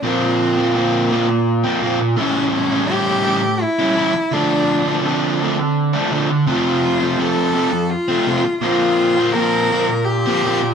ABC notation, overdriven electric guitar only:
X:1
M:3/4
L:1/16
Q:1/4=84
K:Bblyd
V:1 name="Overdriven electric guitar"
[B,,F,B,C]3 [F,B,C] [B,,F,B,C]2 [B,,F,B,C]3 [F,B,C] [B,,F,B,C]2 | [A,,E,G,^CE]3 [G,CE] [A,,E,G,CE]2 [E,G,CE]3 [G,CE] [E,G,CE]2 | [D,F,A,D]3 [F,A,D] [D,F,A,D]2 [D,F,A,D]3 [F,A,D] [D,F,A,D]2 | [F,,C,F,A,C]3 [F,A,C] [F,,C,F,A,C]2 [C,F,A,C]3 [F,A,C] [C,F,A,C]2 |
[B,,F,B,C]3 [F,B,C] [B,,F,B,C]2 [B,,F,B,C]3 [F,B,C] [B,,F,B,C]2 |]